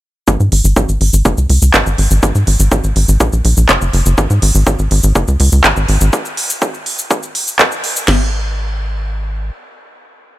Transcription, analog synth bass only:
0.28 0.37 G#1 loud
0.40 0.49 G#2 medium
0.52 0.62 G#1 medium
0.64 0.74 G#1 medium
0.76 0.86 G#1 loud
0.89 0.98 G#1 medium
1.01 1.10 G#1 medium
1.13 1.22 G#1 medium
1.25 1.35 F#1 medium
1.38 1.47 C#2 medium
1.50 1.59 C#2 medium
1.62 1.71 C#2 medium
1.74 1.84 G#1 loud
1.86 1.96 G#1 medium
1.98 2.08 G#1 medium
2.11 2.20 G#1 medium
2.23 2.32 G#1 loud
2.35 2.44 G#2 medium
2.47 2.57 G#1 medium
2.60 2.69 G#1 medium
2.72 2.81 G#1 loud
2.84 2.93 G#1 medium
2.96 3.05 G#1 medium
3.08 3.18 G#1 medium
3.20 3.30 A#1 medium
3.33 3.42 A#1 medium
3.45 3.54 A#1 medium
3.57 3.66 A#1 medium
3.69 3.79 F#1 loud
3.82 3.91 F#1 medium
3.93 4.03 F#1 medium
4.06 4.15 F#1 medium
4.18 4.27 G#1 loud
4.30 4.40 G#2 medium
4.42 4.52 G#1 medium
4.55 4.64 G#1 medium
4.67 4.76 G#1 loud
4.79 4.88 G#1 medium
4.91 5.01 G#1 medium
5.04 5.13 G#1 medium
5.15 5.25 F#1 loud
5.28 5.37 C#2 medium
5.40 5.49 C#2 medium
5.52 5.62 C#2 medium
5.64 5.74 G#1 loud
5.77 5.86 G#1 medium
5.89 5.98 G#1 medium
6.01 6.10 G#1 medium
8.08 9.51 G#1 medium

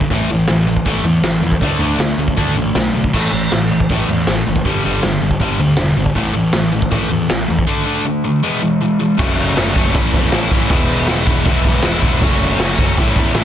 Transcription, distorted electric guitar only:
0.11 0.29 A2 medium
0.11 0.29 E3 medium
0.11 0.29 A3 loud
0.30 0.47 A2 medium
0.30 0.47 E3 medium
0.49 0.66 A2 medium
0.49 0.66 E3 medium
0.67 0.84 A2 medium
0.67 0.84 E3 medium
0.85 1.03 A2 medium
0.85 1.04 E3 medium
0.85 1.04 A3 loud
1.04 1.22 A2 medium
1.04 1.22 E3 medium
1.23 1.41 A2 medium
1.23 1.41 E3 medium
1.43 1.60 A2 medium
1.43 1.60 E3 medium
1.62 1.80 D3 medium
1.62 1.80 A3 medium
1.62 1.80 D4 medium
1.81 1.98 D3 loud
1.81 1.99 A3 loud
1.81 2.00 D4 loud
1.99 2.16 D3 medium
1.99 2.17 A3 medium
2.19 2.36 D3 medium
2.19 2.36 A3 medium
2.37 2.55 D3 medium
2.37 2.56 A3 medium
2.37 2.56 D4 loud
2.57 2.74 D3 medium
2.57 2.74 A3 medium
2.76 2.93 D3 medium
2.76 2.93 A3 medium
2.94 3.11 D3 medium
2.94 3.12 A3 medium
3.13 3.31 A2 medium
3.13 3.31 E3 medium
3.13 3.32 A3 medium
3.32 3.49 A2 medium
3.32 3.49 E3 medium
3.51 3.68 A2 medium
3.51 3.69 E3 medium
3.72 3.88 A2 medium
3.72 3.88 E3 medium
3.91 4.08 A2 medium
3.91 4.08 E3 loud
3.91 4.09 A3 loud
4.10 4.26 A2 medium
4.10 4.26 E3 medium
4.28 4.45 A2 medium
4.28 4.45 E3 medium
4.47 4.63 A2 medium
4.47 4.64 E3 medium
4.65 4.83 G2 medium
4.65 4.83 D3 medium
4.65 4.83 G3 medium
4.84 5.02 G2 medium
4.84 5.02 D3 loud
4.84 5.02 G3 medium
5.03 5.20 G2 medium
5.03 5.20 D3 medium
5.22 5.39 G2 medium
5.22 5.39 D3 medium
5.41 5.58 G2 medium
5.41 5.58 D3 loud
5.41 5.59 G3 medium
5.59 5.76 G2 medium
5.59 5.77 D3 medium
5.77 5.95 G2 medium
5.77 5.95 D3 medium
5.97 6.14 G2 medium
5.97 6.15 D3 medium
6.16 6.33 A2 medium
6.16 6.34 E3 medium
6.16 6.34 A3 medium
6.34 6.52 A2 medium
6.34 6.52 E3 medium
6.54 6.71 A2 medium
6.54 6.71 E3 medium
6.72 6.90 A2 medium
6.72 6.90 E3 medium
6.91 7.09 A2 medium
6.91 7.09 E3 medium
6.91 7.10 A3 loud
7.10 7.27 A2 medium
7.10 7.28 E3 medium
7.29 7.46 A2 medium
7.29 7.47 E3 medium
7.48 7.65 A2 medium
7.48 7.66 E3 medium
7.67 7.85 D3 medium
7.67 7.85 A3 medium
7.67 7.85 D4 medium
7.86 8.04 D3 medium
7.86 8.04 A3 loud
7.86 8.05 D4 loud
8.06 8.23 D3 medium
8.06 8.23 A3 medium
8.24 8.41 D3 medium
8.24 8.42 A3 medium
8.43 8.61 E3 medium
8.43 8.61 G#3 medium
8.43 8.62 B3 loud
8.63 8.79 E3 medium
8.63 8.80 G#3 medium
8.81 8.98 E3 medium
8.81 8.98 G#3 medium
9.00 9.17 E3 medium
9.00 9.17 G#3 medium
9.18 9.55 F#2 loud
9.18 9.55 C#3 loud
9.18 9.56 F#3 medium
9.18 9.56 A3 loud
9.18 9.56 C#4 loud
9.56 9.74 F#2 medium
9.56 9.75 C#3 medium
9.56 9.74 F#3 medium
9.56 9.75 A3 medium
9.56 9.76 C#4 medium
9.75 9.93 F#2 medium
9.75 9.93 C#3 medium
9.75 9.93 F#3 loud
9.75 9.93 A3 loud
9.75 9.94 C#4 medium
9.94 10.30 A2 medium
9.94 10.31 E3 loud
9.94 10.32 A3 loud
9.94 10.32 C#4 loud
9.94 10.32 E4 loud
10.32 10.49 A2 medium
10.32 10.50 E3 medium
10.32 10.51 A3 medium
10.32 10.51 C#4 medium
10.32 10.51 E4 loud
10.50 10.68 A2 medium
10.50 10.67 E3 medium
10.50 10.69 A3 medium
10.50 10.69 C#4 medium
10.50 10.69 E4 loud
10.68 11.07 E3 medium
10.68 11.07 G#3 medium
10.68 11.08 B3 medium
10.68 11.08 E4 medium
11.08 11.25 E3 medium
11.08 11.26 G#3 loud
11.08 11.26 B3 medium
11.08 11.27 E4 medium
11.27 11.44 E3 loud
11.27 11.44 G#3 loud
11.27 11.45 B3 loud
11.27 11.45 E4 loud
11.46 11.83 E3 loud
11.46 11.83 G#3 loud
11.46 11.84 B3 loud
11.46 11.84 E4 medium
11.84 12.02 E3 medium
11.84 12.02 G#3 medium
11.84 12.03 B3 medium
11.84 12.03 E4 loud
12.03 12.20 E3 medium
12.03 12.20 G#3 loud
12.03 12.21 B3 medium
12.03 12.21 E4 loud
12.22 12.59 F#3 medium
12.22 12.59 A3 medium
12.22 12.60 C#4 loud
12.22 12.61 F#4 loud
12.60 12.77 F#3 medium
12.60 12.77 A3 medium
12.60 12.78 C#4 medium
12.60 12.78 F#4 medium
12.79 12.96 F#3 loud
12.79 12.96 A3 medium
12.79 12.96 C#4 loud
12.79 12.96 F#4 loud
12.97 13.35 A2 medium
12.97 13.34 E3 medium
12.97 13.36 A3 loud
12.97 13.35 C#4 loud
12.97 13.36 E4 loud
13.35 13.44 A2 medium
13.35 13.44 E3 medium
13.35 13.44 A3 loud
13.35 13.44 C#4 medium
13.35 13.44 E4 loud

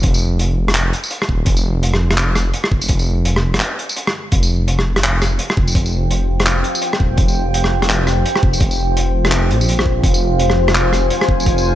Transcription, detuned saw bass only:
0.04 0.92 F1 loud
1.29 1.46 D#1 medium
1.47 2.53 F1 loud
2.72 2.88 F1 medium
2.89 3.61 F1 loud
4.32 5.39 F1 loud
5.57 5.74 F1 medium
5.75 6.63 F1 loud
7.00 7.17 D#1 medium
7.18 8.24 F1 loud
8.43 8.60 F1 medium
8.61 9.52 F1 loud
9.50 10.03 A#1 medium
10.04 11.10 F1 loud
11.29 11.45 F1 medium
11.47 11.75 F1 loud

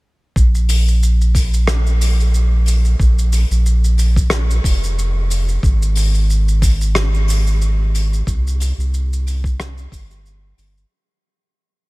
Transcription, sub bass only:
0.36 2.95 A#1 medium
3.00 3.45 A#1 loud
3.51 4.60 A#1 medium
4.64 5.58 F1 medium
5.63 8.22 G#1 loud
8.27 8.72 C2 loud
8.78 9.87 C2 loud
9.92 10.53 G1 medium
10.58 10.85 G1 loud

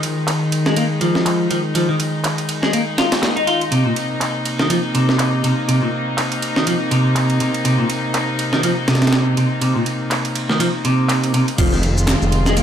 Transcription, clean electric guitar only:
0.66 0.76 G#3 medium
0.77 0.84 A#3 medium
1.01 1.49 F3 medium
1.50 1.58 F3 medium
1.75 1.87 F3 medium
1.89 1.95 D#3 medium
2.62 2.73 G#3 medium
2.73 2.81 A#3 medium
2.98 3.11 F4 medium
3.36 3.46 D#4 medium
3.47 3.61 F4 medium
3.72 3.84 C3 loud
3.86 3.91 A#2 medium
4.60 4.69 D#3 medium
4.70 4.77 F3 medium
4.95 5.43 C3 medium
5.44 5.51 C3 medium
5.68 5.81 C3 loud
5.82 5.88 A#2 medium
6.56 6.67 D#3 medium
6.67 6.75 F3 medium
6.91 7.40 C3 medium
7.41 7.48 C3 medium
7.65 7.77 C3 loud
7.79 7.85 A#2 medium
8.53 8.63 D#3 medium
8.64 8.71 F3 medium
8.88 9.36 C3 loud
9.37 9.45 C3 medium
9.62 9.74 C3 medium
9.76 9.81 A#2 medium
10.49 10.59 D#3 medium
10.60 10.68 F3 medium
10.85 11.33 C3 loud
11.34 11.42 C3 medium
11.59 11.71 F3 loud
11.73 11.78 D#3 medium
12.47 12.57 G#3 medium
12.57 12.63 A#3 medium

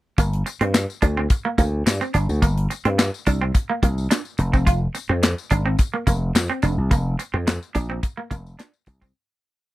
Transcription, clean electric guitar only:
0.18 0.29 A#3 medium
0.46 muted clean electric guitar stroke soft
0.61 0.71 C4 medium
0.74 muted clean electric guitar stroke soft
1.02 1.13 D4 medium
1.17 1.27 C4 medium
1.30 muted clean electric guitar stroke soft
1.45 1.55 A#3 medium
1.58 1.69 A#3 medium
1.86 muted clean electric guitar stroke soft
2.01 2.11 C4 medium
2.14 2.25 D4 medium
2.42 2.53 A#3 medium
2.70 muted clean electric guitar stroke soft
2.85 2.95 C4 medium
2.98 muted clean electric guitar stroke soft
3.27 3.38 D4 medium
3.41 3.51 C4 medium
3.54 muted clean electric guitar stroke soft
3.70 3.79 A#3 medium
3.83 3.94 A#3 medium
4.11 4.21 D4 medium
4.39 muted clean electric guitar stroke soft
4.53 4.63 C4 medium
4.67 4.78 F4 medium
4.95 muted clean electric guitar stroke soft
5.09 5.19 C4 medium
5.23 muted clean electric guitar stroke soft
5.51 5.62 D4 medium
5.66 5.75 C4 medium
5.79 muted clean electric guitar stroke soft
5.94 6.03 A#3 medium
6.07 6.18 A#3 medium
6.35 muted clean electric guitar stroke soft
6.50 6.59 C4 medium
6.63 6.74 D4 medium
6.91 7.02 A#3 medium
7.19 muted clean electric guitar stroke soft
7.34 7.43 C4 medium
7.47 muted clean electric guitar stroke soft
7.75 7.86 D4 medium
7.90 7.99 C4 medium
8.03 muted clean electric guitar stroke soft
8.17 8.27 A#3 medium
8.31 8.42 A#3 medium
8.59 8.70 D4 medium
8.87 muted clean electric guitar stroke soft
9.02 9.11 C4 medium

